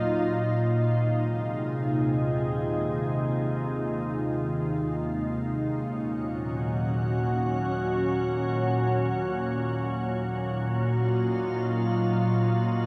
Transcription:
0.00 0.60 D#2 medium
0.00 0.64 A#2 medium
0.00 0.63 F#3 medium
0.00 6.33 D#4 medium
0.00 5.46 F4 medium
0.63 10.31 D#2 medium
0.81 5.46 C3 medium
0.87 5.47 G#3 medium
5.61 11.50 C#4 medium
5.69 12.86 A#2 medium
5.85 12.86 F#3 medium
6.13 10.33 F#4 medium
10.58 12.86 F4 medium
10.79 12.86 D#4 medium

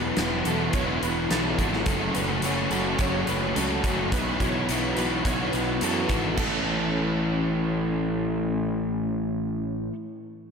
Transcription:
0.00 0.11 E1 medium
0.00 0.44 E2 loud
0.00 0.44 B2 loud
0.00 0.15 E3 medium
0.00 0.17 F#3 medium
0.00 0.15 B3 loud
0.00 0.17 B3 medium
0.00 0.17 E4 medium
0.00 0.18 E4 medium
0.00 0.18 F#4 loud
0.00 0.45 B4 medium
0.16 0.41 E1 medium
0.16 0.72 E3 medium
0.16 0.47 F#3 medium
0.16 0.45 B3 medium
0.16 0.43 E4 medium
0.16 0.44 F#4 medium
0.16 snare loud
0.16 closed hi-hat medium
0.44 0.69 E1 medium
0.44 0.71 E3 medium
0.44 0.75 F#3 medium
0.44 0.75 B3 medium
0.44 0.75 E4 medium
0.44 0.75 F#4 medium
0.44 0.74 A4 medium
0.44 closed hi-hat medium
0.73 0.97 E1 medium
0.73 1.29 E3 medium
0.73 1.04 F#3 medium
0.73 1.03 B3 medium
0.73 1.01 E4 loud
0.73 1.32 F#4 medium
0.73 1.02 C#5 medium
0.73 kick loud
0.73 closed hi-hat medium
1.02 1.26 E1 medium
1.02 1.31 F#3 medium
1.02 1.32 B3 medium
1.02 1.32 E4 medium
1.02 1.30 B4 medium
1.02 closed hi-hat medium
1.30 1.54 B1 medium
1.30 1.85 E3 medium
1.30 1.61 F#3 medium
1.30 1.60 B3 medium
1.30 1.57 E4 medium
1.30 1.57 F#4 medium
1.30 1.86 A4 medium
1.30 snare loud
1.30 closed hi-hat medium
1.57 1.81 G#1 medium
1.57 1.86 E3 medium
1.57 1.86 B3 medium
1.57 1.85 E4 medium
1.57 1.88 F#4 medium
1.57 kick medium
1.57 closed hi-hat medium
1.62 1.88 F#3 medium
1.73 snare soft
1.86 2.10 F#1 medium
1.86 2.43 F#2 medium
1.86 2.43 C#3 medium
1.86 2.17 F#3 medium
1.86 2.16 A3 medium
1.86 2.14 C#4 medium
1.86 2.15 A4 medium
1.86 kick loud
1.86 closed hi-hat medium
1.90 2.14 F#4 loud
2.14 2.39 F#1 medium
2.14 2.42 F#3 medium
2.14 2.43 A3 medium
2.14 2.43 C#4 medium
2.14 2.45 F#4 medium
2.14 2.71 B4 medium
2.14 closed hi-hat medium
2.42 2.66 F#1 medium
2.42 2.74 F#3 medium
2.42 2.73 A3 medium
2.42 2.71 C#4 medium
2.42 2.71 F#4 medium
2.42 closed hi-hat medium
2.71 2.94 F#1 medium
2.71 2.99 F#3 medium
2.71 3.00 A3 medium
2.71 3.00 C#4 medium
2.71 3.01 F#4 medium
2.71 2.99 A4 medium
2.71 closed hi-hat medium
2.99 3.23 F#1 medium
2.99 3.55 F#2 medium
2.99 3.56 C#3 medium
2.99 3.30 F#3 medium
2.99 3.29 A3 medium
2.99 3.28 C#4 loud
2.99 3.27 F#4 medium
2.99 3.27 C#5 medium
2.99 kick loud
2.99 closed hi-hat medium
3.27 3.52 F#1 medium
3.27 3.55 A3 medium
3.27 3.57 C#4 medium
3.27 3.57 F#4 medium
3.27 3.55 B4 medium
3.27 closed hi-hat medium
3.32 3.54 F#3 medium
3.55 3.80 C#2 medium
3.55 3.87 F#3 medium
3.55 3.85 A3 medium
3.55 3.85 C#4 medium
3.55 3.83 F#4 medium
3.55 4.12 A4 medium
3.55 closed hi-hat medium
3.84 4.07 F#1 medium
3.84 4.12 A3 medium
3.84 4.11 C#4 medium
3.84 4.11 F#4 medium
3.84 kick medium
3.84 closed hi-hat medium
3.88 4.13 F#3 medium
4.12 4.36 B1 medium
4.12 4.68 B2 medium
4.12 4.67 E3 medium
4.12 4.42 B3 medium
4.12 4.40 E4 medium
4.12 4.39 F#4 medium
4.12 4.40 B4 medium
4.12 kick loud
4.12 closed hi-hat medium
4.40 4.64 B1 medium
4.40 4.68 B3 medium
4.40 4.69 E4 medium
4.40 4.70 F#4 medium
4.40 4.97 C#5 medium
4.40 kick medium
4.40 closed hi-hat medium
4.68 4.93 B1 medium
4.68 5.24 E3 medium
4.68 4.99 B3 medium
4.68 4.98 E4 medium
4.68 4.95 F#4 medium
4.68 closed hi-hat medium
4.97 5.21 B1 medium
4.97 5.25 B3 medium
4.97 5.26 E4 medium
4.97 5.27 F#4 medium
4.97 5.25 B4 medium
4.97 closed hi-hat medium
5.25 5.49 B1 medium
5.25 5.82 B2 medium
5.25 5.80 E3 medium
5.25 5.54 B3 medium
5.25 5.52 E4 medium
5.25 5.50 F#4 loud
5.25 5.54 C#5 medium
5.25 kick loud
5.25 closed hi-hat medium
5.52 5.78 B1 medium
5.52 5.81 B3 medium
5.52 5.82 E4 medium
5.52 5.83 F#4 medium
5.52 5.82 B4 medium
5.52 closed hi-hat medium
5.81 6.06 F#2 medium
5.81 6.37 E3 medium
5.81 6.10 B3 medium
5.81 6.09 E4 medium
5.81 6.07 F#4 medium
5.81 6.37 A4 medium
5.81 closed hi-hat medium
6.08 6.33 G#1 medium
6.08 6.38 B3 soft
6.08 6.37 E4 medium
6.08 6.36 F#4 medium
6.08 kick medium
6.08 closed hi-hat medium
6.37 9.88 A1 medium
6.37 9.91 A2 medium
6.37 9.92 E3 medium
6.37 9.93 A3 medium
6.37 9.93 C#4 medium
6.37 9.94 E4 medium
6.37 7.17 A4 medium
6.37 9.95 A4 loud
6.37 kick medium
6.37 crash medium

